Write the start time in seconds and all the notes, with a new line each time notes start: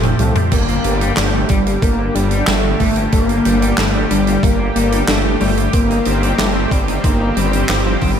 Already playing: F1 F3 A3 C4 G4
0.03 F3, closed hi-hat, mid tom
0.19 C2 F3 G3 A3, closed hi-hat
0.35 A3, closed hi-hat, mid tom
0.52 G1 D3 G3 A#3 G4, kick, closed hi-hat, crash
0.68 A#3, closed hi-hat
0.84 G1 G3 A#3, closed hi-hat
1.01 G3, closed hi-hat
1.17 G1 A3 D4, snare, clap, closed hi-hat
1.34 G3
1.49 G1 G3, kick, closed hi-hat
1.66 A#3, closed hi-hat
1.82 G1 G3 A#3, kick, closed hi-hat
1.99 A#3
2.14 G1 G3 D4, closed hi-hat
2.31 G3, closed hi-hat
2.47 G1 G3 A3 D4, snare, clap, closed hi-hat
2.64 G3
2.80 G1 G3 A3 A#3, kick, open hi-hat
2.96 A#3, closed hi-hat
3.12 G1 G3 A#3 D4, kick, closed hi-hat
3.29 A#3, closed hi-hat
3.45 G1 G3, closed hi-hat
3.62 G3, closed hi-hat
3.78 G1 A3 A#3 D4, snare, clap, closed hi-hat
3.94 G3
4.10 G1 G3 D4, closed hi-hat
4.27 A#3, closed hi-hat
4.43 G1 G3 A#3, kick, closed hi-hat
4.60 A#3
4.76 G1 G3 A#3, closed hi-hat
4.92 G3, closed hi-hat
5.08 G1 A3 D4, snare, clap, closed hi-hat
5.25 G3
5.41 G1 G3 A3, open hi-hat
5.57 A#3, closed hi-hat
5.73 G1 D#3 A#3 C4, kick, closed hi-hat
5.90 D#4, closed hi-hat
6.05 G1 C4 D#4, closed hi-hat
6.23 C4, closed hi-hat
6.38 G1 G3 A3 G4, snare, clap, closed hi-hat
6.55 C4
6.71 G1 G3 C4, kick, closed hi-hat
6.88 D#4, closed hi-hat
7.04 G1 A#3 C4 D#4, kick, closed hi-hat
7.20 D#4
7.36 G1 G3 C4, closed hi-hat
7.53 C4, closed hi-hat
7.69 G1 F3 C4 G4, snare, clap, closed hi-hat
7.86 C4
8.01 G1 G3 C4 D#4, kick, open hi-hat